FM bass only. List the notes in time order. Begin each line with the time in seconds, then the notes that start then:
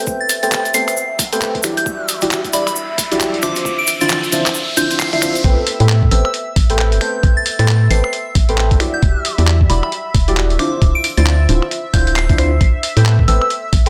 5.44 A1
5.80 A2
6.11 A1
6.56 A1
6.92 G1
7.23 A1
7.59 A2
7.90 A1
8.35 A1
8.71 G1
9.02 E1
9.38 E2
9.70 E1
10.14 E1
10.50 D1
10.82 D1
11.18 D2
11.49 D1
11.94 D1
12.29 D2
12.61 A1
12.97 A2
13.28 A1
13.73 A1